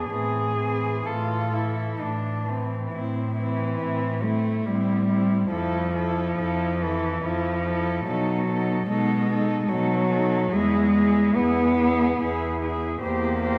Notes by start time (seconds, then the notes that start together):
0.09 A2 E3 C4 G#4
0.59 E3 C4
1.06 A2 F4 A4
1.53 E3 E4
1.99 A2 D4
2.46 E3 C4
2.92 A2 C4 E4
3.34 E3 E4
3.41 C4
3.80 A2 E4
3.84 C4
4.22 A3 C4 E4
4.65 A2 G3 C4 E4
5.09 C4 E4
5.51 F2 F3 E4 A4
5.94 E4 A4
6.38 F2 E4 A4
6.81 E3 E4 A4
7.24 F2 F3 E4 A4
7.66 E4 A4
8.06 B2 F#3 D#4 A4
8.49 D#4 A4
8.87 B2 G#3 D#4 A4
9.30 D#4 A4
9.63 G#3
9.69 B2 F#3 D#4 A4
10.11 D#4 A4
10.52 E2 G#3 E4 G#4
10.94 E4 G#4
11.35 E2 B3 E4 G#4
11.78 E4 G#4
12.20 E2 E4 G#4
12.61 E4 G#4
13.02 E2 A#3 G4 C5
13.42 G4 C5